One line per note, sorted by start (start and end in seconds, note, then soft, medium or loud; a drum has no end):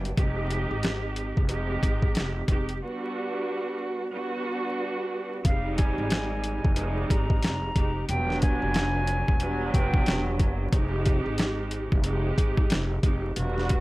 0.00 0.15 F#1 medium
0.05 closed hi-hat medium
0.17 0.67 F1 loud
0.17 1.41 G#3 loud
0.17 1.41 C4 medium
0.17 1.42 D#4 loud
0.17 1.42 G4 loud
0.17 kick loud
0.17 closed hi-hat medium
0.51 closed hi-hat medium
0.71 1.33 G#1 medium
0.83 snare loud
0.83 closed hi-hat medium
1.16 closed hi-hat medium
1.37 1.79 F1 medium
1.37 kick medium
1.48 2.41 G#3 loud
1.48 2.42 C4 medium
1.48 2.42 D#4 medium
1.48 2.42 G4 loud
1.48 closed hi-hat medium
1.83 2.13 G#1 medium
1.83 kick medium
1.83 closed hi-hat medium
2.02 kick loud
2.15 2.45 F1 medium
2.15 snare loud
2.15 closed hi-hat medium
2.48 2.78 F1 medium
2.48 2.79 G#3 medium
2.48 2.80 C4 medium
2.48 2.80 D#4 medium
2.48 2.80 G4 medium
2.48 kick loud
2.48 closed hi-hat medium
2.69 closed hi-hat medium
2.81 4.05 G3 loud
2.81 4.05 B3 medium
2.81 4.05 D4 medium
2.81 4.06 F#4 loud
4.12 5.36 G3 loud
4.12 5.36 B3 medium
4.12 5.37 D4 medium
4.12 5.37 F#4 loud
5.44 5.94 F1 loud
5.44 6.69 G3 loud
5.44 6.68 G#3 loud
5.44 6.69 C4 medium
5.44 6.69 D#4 loud
5.44 5.75 F5 loud
5.44 kick loud
5.44 closed hi-hat medium
5.77 7.06 G#5 medium
5.77 kick loud
5.77 closed hi-hat medium
5.98 6.60 G#1 loud
6.10 snare loud
6.10 closed hi-hat medium
6.44 closed hi-hat medium
6.65 7.06 F1 medium
6.65 kick loud
6.75 7.70 G3 loud
6.75 7.69 G#3 loud
6.75 7.69 C4 medium
6.75 7.69 D#4 loud
6.75 closed hi-hat medium
7.10 7.40 G#1 loud
7.10 8.05 A#5 medium
7.10 kick loud
7.10 closed hi-hat medium
7.30 kick loud
7.43 7.73 F1 medium
7.43 snare loud
7.43 closed hi-hat medium
7.76 8.06 F1 loud
7.76 8.07 G#3 medium
7.76 8.07 C4 medium
7.76 8.07 D#4 medium
7.76 8.08 G4 medium
7.76 kick loud
7.76 closed hi-hat medium
8.09 8.58 E1 loud
8.09 9.33 F#3 loud
8.09 9.32 G3 loud
8.09 9.33 B3 loud
8.09 9.33 D4 loud
8.09 8.39 G5 loud
8.09 closed hi-hat loud
8.30 snare soft
8.42 9.70 G#5 loud
8.42 kick loud
8.42 closed hi-hat medium
8.62 9.24 F1 loud
8.74 snare loud
8.74 closed hi-hat medium
9.07 closed hi-hat medium
9.28 9.70 E1 medium
9.28 kick medium
9.40 10.65 F#3 loud
9.40 10.64 G3 loud
9.40 10.64 B3 loud
9.40 10.64 D4 loud
9.40 closed hi-hat medium
9.73 10.04 F1 loud
9.73 10.23 G5 loud
9.73 kick loud
9.73 closed hi-hat medium
9.94 kick loud
10.06 10.40 E1 medium
10.06 snare loud
10.06 closed hi-hat medium
10.39 10.69 F#1 loud
10.39 kick loud
10.39 closed hi-hat medium
10.72 11.22 F1 loud
10.72 11.96 G#3 loud
10.72 11.96 C4 medium
10.72 11.97 D#4 loud
10.72 11.97 G4 loud
10.72 kick loud
10.72 closed hi-hat medium
11.06 kick loud
11.06 closed hi-hat medium
11.26 11.88 G#1 loud
11.38 snare loud
11.38 closed hi-hat medium
11.71 closed hi-hat medium
11.92 12.34 F1 loud
11.92 kick medium
12.03 12.96 G#3 loud
12.03 12.97 C4 medium
12.03 12.97 D#4 loud
12.03 12.97 G4 loud
12.03 closed hi-hat medium
12.38 kick medium
12.38 closed hi-hat medium
12.57 kick loud
12.70 13.00 F1 medium
12.70 snare loud
12.70 closed hi-hat medium
13.03 13.33 F1 medium
13.03 13.34 G#3 medium
13.03 13.35 C4 medium
13.03 13.35 D#4 medium
13.03 13.35 G4 medium
13.03 kick loud
13.03 closed hi-hat medium
13.36 13.80 E1 loud
13.36 13.80 G3 loud
13.36 13.80 B3 medium
13.36 13.80 D4 loud
13.36 13.80 F#4 loud
13.36 closed hi-hat loud
13.58 snare soft
13.69 kick loud
13.69 closed hi-hat medium